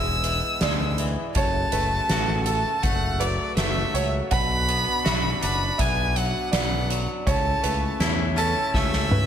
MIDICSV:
0, 0, Header, 1, 7, 480
1, 0, Start_track
1, 0, Key_signature, 3, "major"
1, 0, Tempo, 738007
1, 881, Time_signature, 4, 2, 24, 8
1, 6025, End_track
2, 0, Start_track
2, 0, Title_t, "Violin"
2, 0, Program_c, 0, 40
2, 0, Note_on_c, 0, 88, 97
2, 637, Note_off_c, 0, 88, 0
2, 879, Note_on_c, 0, 81, 94
2, 1574, Note_off_c, 0, 81, 0
2, 1604, Note_on_c, 0, 81, 87
2, 1839, Note_on_c, 0, 78, 92
2, 1849, Note_off_c, 0, 81, 0
2, 2080, Note_on_c, 0, 74, 80
2, 2089, Note_off_c, 0, 78, 0
2, 2318, Note_off_c, 0, 74, 0
2, 2322, Note_on_c, 0, 76, 83
2, 2656, Note_off_c, 0, 76, 0
2, 2806, Note_on_c, 0, 83, 112
2, 3498, Note_off_c, 0, 83, 0
2, 3533, Note_on_c, 0, 83, 98
2, 3771, Note_on_c, 0, 80, 97
2, 3780, Note_off_c, 0, 83, 0
2, 4016, Note_on_c, 0, 78, 87
2, 4026, Note_off_c, 0, 80, 0
2, 4249, Note_off_c, 0, 78, 0
2, 4254, Note_on_c, 0, 78, 86
2, 4583, Note_off_c, 0, 78, 0
2, 4739, Note_on_c, 0, 81, 92
2, 5184, Note_off_c, 0, 81, 0
2, 5441, Note_on_c, 0, 81, 107
2, 5688, Note_on_c, 0, 76, 96
2, 5698, Note_off_c, 0, 81, 0
2, 6025, Note_off_c, 0, 76, 0
2, 6025, End_track
3, 0, Start_track
3, 0, Title_t, "Felt piano"
3, 0, Program_c, 1, 0
3, 0, Note_on_c, 1, 76, 79
3, 402, Note_off_c, 1, 76, 0
3, 402, Note_on_c, 1, 74, 78
3, 881, Note_off_c, 1, 74, 0
3, 887, Note_on_c, 1, 73, 86
3, 1121, Note_on_c, 1, 71, 75
3, 1124, Note_off_c, 1, 73, 0
3, 1601, Note_off_c, 1, 71, 0
3, 1602, Note_on_c, 1, 69, 74
3, 2080, Note_on_c, 1, 71, 72
3, 2082, Note_off_c, 1, 69, 0
3, 2561, Note_off_c, 1, 71, 0
3, 2563, Note_on_c, 1, 73, 76
3, 2802, Note_off_c, 1, 73, 0
3, 2802, Note_on_c, 1, 78, 91
3, 3282, Note_off_c, 1, 78, 0
3, 3285, Note_on_c, 1, 76, 75
3, 3750, Note_off_c, 1, 76, 0
3, 3760, Note_on_c, 1, 76, 88
3, 4238, Note_on_c, 1, 74, 82
3, 4241, Note_off_c, 1, 76, 0
3, 4720, Note_off_c, 1, 74, 0
3, 4725, Note_on_c, 1, 73, 89
3, 4963, Note_off_c, 1, 73, 0
3, 4965, Note_on_c, 1, 71, 77
3, 5443, Note_off_c, 1, 71, 0
3, 5449, Note_on_c, 1, 69, 77
3, 5925, Note_off_c, 1, 69, 0
3, 5927, Note_on_c, 1, 71, 77
3, 6025, Note_off_c, 1, 71, 0
3, 6025, End_track
4, 0, Start_track
4, 0, Title_t, "Harmonium"
4, 0, Program_c, 2, 20
4, 0, Note_on_c, 2, 56, 64
4, 0, Note_on_c, 2, 59, 61
4, 0, Note_on_c, 2, 64, 61
4, 0, Note_on_c, 2, 71, 62
4, 0, Note_on_c, 2, 76, 77
4, 854, Note_off_c, 2, 76, 0
4, 859, Note_off_c, 2, 56, 0
4, 859, Note_off_c, 2, 59, 0
4, 860, Note_off_c, 2, 71, 0
4, 861, Note_off_c, 2, 64, 0
4, 879, Note_on_c, 2, 57, 68
4, 879, Note_on_c, 2, 69, 60
4, 882, Note_on_c, 2, 49, 63
4, 882, Note_on_c, 2, 66, 61
4, 883, Note_on_c, 2, 78, 73
4, 2782, Note_off_c, 2, 57, 0
4, 2782, Note_off_c, 2, 69, 0
4, 2783, Note_off_c, 2, 49, 0
4, 2806, Note_on_c, 2, 59, 71
4, 2807, Note_on_c, 2, 62, 69
4, 2807, Note_on_c, 2, 74, 65
4, 4697, Note_off_c, 2, 66, 0
4, 4697, Note_off_c, 2, 78, 0
4, 4705, Note_off_c, 2, 59, 0
4, 4705, Note_off_c, 2, 74, 0
4, 4706, Note_off_c, 2, 62, 0
4, 4720, Note_on_c, 2, 57, 77
4, 4722, Note_on_c, 2, 64, 71
4, 4722, Note_on_c, 2, 76, 87
4, 4724, Note_on_c, 2, 61, 66
4, 4727, Note_on_c, 2, 73, 64
4, 6025, Note_off_c, 2, 57, 0
4, 6025, Note_off_c, 2, 61, 0
4, 6025, Note_off_c, 2, 64, 0
4, 6025, Note_off_c, 2, 73, 0
4, 6025, Note_off_c, 2, 76, 0
4, 6025, End_track
5, 0, Start_track
5, 0, Title_t, "Clean electric guitar"
5, 0, Program_c, 3, 27
5, 0, Note_on_c, 3, 40, 67
5, 0, Note_on_c, 3, 56, 65
5, 0, Note_on_c, 3, 59, 60
5, 0, Note_on_c, 3, 64, 67
5, 160, Note_on_c, 3, 52, 59
5, 161, Note_off_c, 3, 40, 0
5, 394, Note_off_c, 3, 56, 0
5, 401, Note_on_c, 3, 56, 62
5, 637, Note_off_c, 3, 52, 0
5, 642, Note_off_c, 3, 64, 0
5, 645, Note_on_c, 3, 52, 65
5, 881, Note_off_c, 3, 56, 0
5, 882, Note_off_c, 3, 59, 0
5, 883, Note_off_c, 3, 52, 0
5, 884, Note_on_c, 3, 42, 69
5, 1129, Note_on_c, 3, 57, 60
5, 1369, Note_on_c, 3, 66, 73
5, 1838, Note_off_c, 3, 57, 0
5, 1845, Note_on_c, 3, 57, 67
5, 2083, Note_off_c, 3, 42, 0
5, 2087, Note_on_c, 3, 54, 64
5, 2324, Note_off_c, 3, 57, 0
5, 2332, Note_on_c, 3, 57, 67
5, 2560, Note_off_c, 3, 54, 0
5, 2566, Note_off_c, 3, 66, 0
5, 2568, Note_on_c, 3, 54, 61
5, 2805, Note_off_c, 3, 54, 0
5, 2807, Note_off_c, 3, 57, 0
5, 2810, Note_on_c, 3, 47, 74
5, 3049, Note_on_c, 3, 59, 65
5, 3282, Note_on_c, 3, 66, 77
5, 3528, Note_on_c, 3, 62, 67
5, 3758, Note_off_c, 3, 59, 0
5, 3766, Note_on_c, 3, 59, 74
5, 4006, Note_off_c, 3, 47, 0
5, 4009, Note_on_c, 3, 54, 62
5, 4239, Note_off_c, 3, 59, 0
5, 4247, Note_on_c, 3, 59, 74
5, 4482, Note_off_c, 3, 54, 0
5, 4482, Note_off_c, 3, 66, 0
5, 4489, Note_on_c, 3, 54, 68
5, 4724, Note_off_c, 3, 59, 0
5, 4725, Note_off_c, 3, 62, 0
5, 4726, Note_off_c, 3, 54, 0
5, 4730, Note_on_c, 3, 49, 68
5, 4966, Note_on_c, 3, 57, 63
5, 5205, Note_on_c, 3, 64, 78
5, 5440, Note_on_c, 3, 61, 69
5, 5681, Note_off_c, 3, 57, 0
5, 5689, Note_on_c, 3, 57, 70
5, 5925, Note_off_c, 3, 49, 0
5, 5928, Note_on_c, 3, 52, 68
5, 6025, Note_off_c, 3, 52, 0
5, 6025, Note_off_c, 3, 57, 0
5, 6025, Note_off_c, 3, 61, 0
5, 6025, Note_off_c, 3, 64, 0
5, 6025, End_track
6, 0, Start_track
6, 0, Title_t, "Fingered electric bass"
6, 0, Program_c, 4, 33
6, 0, Note_on_c, 4, 28, 82
6, 263, Note_off_c, 4, 28, 0
6, 401, Note_on_c, 4, 38, 83
6, 746, Note_off_c, 4, 38, 0
6, 880, Note_on_c, 4, 30, 83
6, 1053, Note_off_c, 4, 30, 0
6, 1121, Note_on_c, 4, 30, 77
6, 1294, Note_off_c, 4, 30, 0
6, 1367, Note_on_c, 4, 33, 82
6, 1709, Note_off_c, 4, 33, 0
6, 1845, Note_on_c, 4, 30, 89
6, 2189, Note_off_c, 4, 30, 0
6, 2319, Note_on_c, 4, 30, 89
6, 2492, Note_off_c, 4, 30, 0
6, 2561, Note_on_c, 4, 37, 83
6, 2734, Note_off_c, 4, 37, 0
6, 2807, Note_on_c, 4, 35, 83
6, 3150, Note_off_c, 4, 35, 0
6, 3291, Note_on_c, 4, 35, 87
6, 3460, Note_off_c, 4, 35, 0
6, 3531, Note_on_c, 4, 30, 82
6, 3700, Note_off_c, 4, 30, 0
6, 3767, Note_on_c, 4, 35, 90
6, 4110, Note_off_c, 4, 35, 0
6, 4246, Note_on_c, 4, 35, 88
6, 4589, Note_off_c, 4, 35, 0
6, 4726, Note_on_c, 4, 37, 90
6, 4897, Note_off_c, 4, 37, 0
6, 4968, Note_on_c, 4, 37, 85
6, 5138, Note_off_c, 4, 37, 0
6, 5202, Note_on_c, 4, 40, 86
6, 5547, Note_off_c, 4, 40, 0
6, 5685, Note_on_c, 4, 37, 86
6, 6025, Note_off_c, 4, 37, 0
6, 6025, End_track
7, 0, Start_track
7, 0, Title_t, "Drums"
7, 155, Note_on_c, 9, 42, 69
7, 220, Note_off_c, 9, 42, 0
7, 395, Note_on_c, 9, 38, 105
7, 395, Note_on_c, 9, 42, 90
7, 460, Note_off_c, 9, 38, 0
7, 460, Note_off_c, 9, 42, 0
7, 638, Note_on_c, 9, 42, 63
7, 703, Note_off_c, 9, 42, 0
7, 877, Note_on_c, 9, 42, 86
7, 880, Note_on_c, 9, 36, 91
7, 942, Note_off_c, 9, 42, 0
7, 945, Note_off_c, 9, 36, 0
7, 1119, Note_on_c, 9, 42, 69
7, 1184, Note_off_c, 9, 42, 0
7, 1362, Note_on_c, 9, 38, 99
7, 1362, Note_on_c, 9, 42, 84
7, 1427, Note_off_c, 9, 38, 0
7, 1427, Note_off_c, 9, 42, 0
7, 1598, Note_on_c, 9, 42, 64
7, 1663, Note_off_c, 9, 42, 0
7, 1842, Note_on_c, 9, 36, 79
7, 1842, Note_on_c, 9, 42, 81
7, 1907, Note_off_c, 9, 36, 0
7, 1907, Note_off_c, 9, 42, 0
7, 2085, Note_on_c, 9, 42, 66
7, 2150, Note_off_c, 9, 42, 0
7, 2322, Note_on_c, 9, 38, 100
7, 2322, Note_on_c, 9, 42, 81
7, 2387, Note_off_c, 9, 38, 0
7, 2387, Note_off_c, 9, 42, 0
7, 2567, Note_on_c, 9, 42, 63
7, 2632, Note_off_c, 9, 42, 0
7, 2803, Note_on_c, 9, 42, 84
7, 2806, Note_on_c, 9, 36, 98
7, 2868, Note_off_c, 9, 42, 0
7, 2871, Note_off_c, 9, 36, 0
7, 3047, Note_on_c, 9, 42, 69
7, 3112, Note_off_c, 9, 42, 0
7, 3289, Note_on_c, 9, 38, 107
7, 3289, Note_on_c, 9, 42, 83
7, 3354, Note_off_c, 9, 38, 0
7, 3354, Note_off_c, 9, 42, 0
7, 3528, Note_on_c, 9, 42, 70
7, 3593, Note_off_c, 9, 42, 0
7, 3766, Note_on_c, 9, 36, 78
7, 3766, Note_on_c, 9, 42, 92
7, 3831, Note_off_c, 9, 36, 0
7, 3831, Note_off_c, 9, 42, 0
7, 4007, Note_on_c, 9, 42, 71
7, 4072, Note_off_c, 9, 42, 0
7, 4246, Note_on_c, 9, 38, 103
7, 4246, Note_on_c, 9, 42, 94
7, 4311, Note_off_c, 9, 38, 0
7, 4311, Note_off_c, 9, 42, 0
7, 4490, Note_on_c, 9, 42, 70
7, 4555, Note_off_c, 9, 42, 0
7, 4727, Note_on_c, 9, 36, 96
7, 4729, Note_on_c, 9, 42, 88
7, 4792, Note_off_c, 9, 36, 0
7, 4794, Note_off_c, 9, 42, 0
7, 4967, Note_on_c, 9, 42, 74
7, 5032, Note_off_c, 9, 42, 0
7, 5205, Note_on_c, 9, 38, 111
7, 5205, Note_on_c, 9, 42, 83
7, 5270, Note_off_c, 9, 38, 0
7, 5270, Note_off_c, 9, 42, 0
7, 5448, Note_on_c, 9, 42, 65
7, 5513, Note_off_c, 9, 42, 0
7, 5685, Note_on_c, 9, 36, 82
7, 5689, Note_on_c, 9, 38, 58
7, 5750, Note_off_c, 9, 36, 0
7, 5754, Note_off_c, 9, 38, 0
7, 5806, Note_on_c, 9, 38, 54
7, 5871, Note_off_c, 9, 38, 0
7, 5927, Note_on_c, 9, 47, 70
7, 5992, Note_off_c, 9, 47, 0
7, 6025, End_track
0, 0, End_of_file